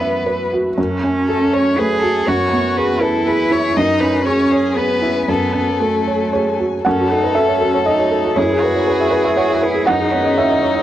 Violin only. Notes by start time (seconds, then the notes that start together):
Already playing: B4
1.28 A4
1.54 C#5
1.79 B4
2.02 A4
2.26 C#5
2.77 B4
3.02 A4
3.26 B4
3.52 C#5
3.77 D#5
4.00 B4
4.25 C#5
4.51 G#4
4.77 B4
5.28 A4
6.84 A4
8.38 G#4
9.87 D#4